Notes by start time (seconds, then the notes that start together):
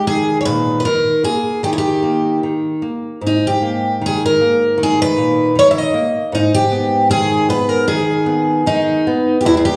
0.07 D#3 G#4
0.41 C#5
0.45 A#2 B4
0.80 B4
0.85 D#3 A#4
1.23 A#3 G#4
1.63 D#3 G4
1.73 E4
1.78 G4
2.03 A#3
2.43 D#3
2.82 A#3
3.21 G#2
3.27 D#4
3.47 G4
3.62 A#3
4.01 D#3
4.06 G#4
4.26 A#4
4.41 A#3
4.78 D#3
4.83 G#4
5.02 B4
5.17 A#2
5.55 D#3 C#5
5.71 E5
5.78 D#5
5.94 A#3
6.32 G#2 D#4
6.55 G4
6.71 B3
7.10 D#3 G#4
7.49 B3 B4
7.69 A#4
7.87 D#3 G#4
8.26 B3
8.66 D#3 D#4
9.07 B3
9.41 G4
9.45 E2 E4
9.57 G#4
9.65 G4